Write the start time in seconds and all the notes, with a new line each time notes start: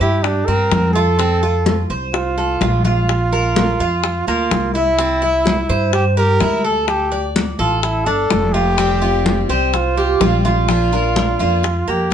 0.00 G2 E4 G4, high conga
0.23 D4, high bongo, high conga
0.46 G2 C4 A#4, high bongo, high conga
0.71 F2, high bongo, low bongo, high conga
0.93 F4 A4, high bongo, high conga
1.19 C4, high bongo, high conga
1.43 F4, high bongo, high conga
1.66 high bongo, high conga
1.90 C2 C5, high conga
2.13 F4, high bongo, high conga
2.38 A4, high bongo, high conga
2.61 A#1 F4, high bongo, low bongo, high conga
2.85 F4, high bongo, high conga
3.08 high bongo, high conga
3.32 A#4, high bongo, high conga
3.56 high bongo, high conga
3.79 F2 F4, high conga
4.04 high bongo, high conga
4.27 D2 A#3 F4, high bongo, high conga
4.51 C2, high bongo, low bongo, high conga
4.74 E4, high bongo, high conga
4.99 C4, high bongo, high conga
5.22 E4, high bongo, high conga
5.46 high bongo, high conga
5.69 G2 C5, high conga
5.93 G4, high bongo, high conga
6.17 G4 A#4, high bongo, high conga
6.40 D2 E4, high bongo, low bongo, high conga
6.64 A4, high bongo
6.88 G4, high bongo, high conga
7.12 D5, high bongo, high conga
7.36 high bongo, high conga
7.59 A1 F4 A4, high conga
7.82 E4, high bongo, high conga
8.06 G1 D4 A4, high bongo, high conga
8.30 F1, high bongo, low bongo, high conga
8.53 F4 G4, high bongo, high conga
8.77 F3 G3 C4 G4, high bongo, high conga
9.02 G3 C4 F4 G4, high bongo, high conga
9.26 high bongo, high conga
9.49 C2 G3 C4 G4 C5, high conga
9.73 F4, muted steel-string acoustic guitar stroke, high bongo, high conga
9.97 G4, high bongo, high conga
10.20 A#1 F3 G3 C4 F4 G4, high bongo, low bongo, high conga
10.45 F4, high bongo, high conga
10.68 F3 A#3 D4 F4, high bongo, high conga
10.92 A#3 D4 F4 A#4, high bongo, high conga
11.16 high bongo, high conga
11.39 F2 A#3 D4 F4, high conga
11.63 muted steel-string acoustic guitar stroke, high bongo, high conga
11.88 F2 A#3 G4, high bongo, high conga
12.10 F3